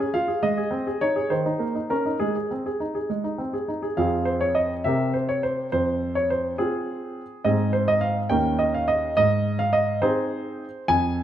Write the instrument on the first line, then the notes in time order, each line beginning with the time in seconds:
grand piano
Already playing: G#5
0.00 G#4
0.14 F4 F5
0.28 G#4
0.43 G#3 D#5
0.57 G#4
0.71 C4
0.87 G#4
1.01 D#4 C#5
1.16 G#4
1.30 D#3 C5
1.46 D#4
1.59 A#3
1.75 D#4
1.90 C#4 A#4
2.06 D#4
2.20 G#3 G#4
2.36 G#4
2.51 C4
2.66 G#4
2.80 D#4
2.95 G#4
3.10 G#3
3.24 D#4
3.38 C4
3.53 G#4
3.68 D#4
3.83 G#4
3.97 F2 C4 F4 G#4 F5
4.25 C5
4.41 C#5
4.55 D#5
4.84 C3 C4 G4 A#4 E5
5.14 C5
5.29 C#5
5.43 C5
5.72 F2 C5
6.15 C#5
6.30 C5
6.58 C4 F4 G#4
7.44 G#2 C4 D#4 G#4 D#5
7.73 C5
7.88 D#5
8.01 F5
8.29 D#2 C#4 D#4 A#4 G5
8.59 D#5
8.74 F5
8.88 D#5
9.17 G#2 D#5
9.59 F5
9.73 D#5
10.02 C4 D#4 G#4 C5
10.88 F2 G#5